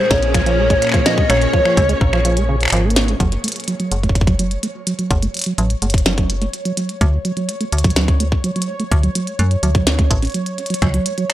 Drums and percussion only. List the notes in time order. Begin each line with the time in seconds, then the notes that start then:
0.11 kick, snare
0.23 closed hi-hat
0.34 finger snap, kick, closed hi-hat
0.46 closed hi-hat
0.70 kick, closed hi-hat
0.82 finger snap, closed hi-hat
0.85 finger snap
0.87 finger snap
0.89 finger snap
0.92 finger snap, kick, closed hi-hat
1.06 snare
1.18 kick
1.30 finger snap, closed hi-hat
1.42 closed hi-hat
1.53 kick
1.65 finger snap
1.77 kick, closed hi-hat
1.89 closed hi-hat
2.01 kick
2.13 finger snap
2.25 closed hi-hat
2.37 closed hi-hat
2.61 finger snap, closed hi-hat
2.65 finger snap
2.68 finger snap, closed hi-hat
2.70 finger snap, closed hi-hat
2.90 closed hi-hat
2.96 snare
3.08 closed hi-hat
3.20 kick, closed hi-hat
3.32 closed hi-hat
3.44 closed hi-hat
3.48 closed hi-hat
3.52 closed hi-hat
3.56 closed hi-hat
3.60 closed hi-hat
3.64 closed hi-hat
3.68 closed hi-hat
3.80 closed hi-hat
3.92 closed hi-hat
4.03 kick, closed hi-hat
4.09 kick
4.15 kick, closed hi-hat
4.21 kick
4.27 kick, closed hi-hat
4.39 closed hi-hat
4.51 closed hi-hat
4.63 closed hi-hat
4.87 closed hi-hat
4.99 closed hi-hat
5.11 kick, closed hi-hat
5.23 closed hi-hat
5.34 closed hi-hat
5.37 closed hi-hat
5.39 closed hi-hat
5.42 closed hi-hat
5.44 closed hi-hat
5.58 closed hi-hat
5.70 closed hi-hat
5.82 closed hi-hat
5.90 kick, closed hi-hat
5.94 closed hi-hat
5.98 closed hi-hat
6.06 snare, closed hi-hat
6.18 kick, closed hi-hat
6.30 closed hi-hat
6.42 closed hi-hat
6.54 closed hi-hat
6.65 closed hi-hat
6.77 closed hi-hat
6.89 closed hi-hat
7.01 kick, closed hi-hat
7.25 closed hi-hat
7.37 closed hi-hat
7.49 closed hi-hat
7.61 closed hi-hat
7.72 closed hi-hat
7.78 closed hi-hat
7.84 kick, closed hi-hat
7.90 closed hi-hat
7.96 snare, closed hi-hat
8.08 kick, closed hi-hat
8.20 closed hi-hat
8.32 kick
8.44 closed hi-hat
8.56 closed hi-hat
8.62 closed hi-hat
8.80 closed hi-hat
8.92 kick, closed hi-hat
9.03 closed hi-hat
9.15 closed hi-hat
9.27 closed hi-hat
9.39 closed hi-hat
9.51 closed hi-hat
9.63 closed hi-hat
9.75 kick, closed hi-hat
9.87 snare, closed hi-hat
9.99 kick, closed hi-hat
10.11 kick, closed hi-hat
10.23 closed hi-hat
10.25 closed hi-hat
10.27 closed hi-hat
10.30 closed hi-hat
10.32 closed hi-hat
10.34 closed hi-hat
10.46 closed hi-hat
10.58 closed hi-hat
10.66 closed hi-hat
10.70 closed hi-hat
10.74 closed hi-hat
10.82 finger snap, kick, closed hi-hat
10.94 closed hi-hat
11.06 closed hi-hat
11.18 closed hi-hat
11.30 finger snap, closed hi-hat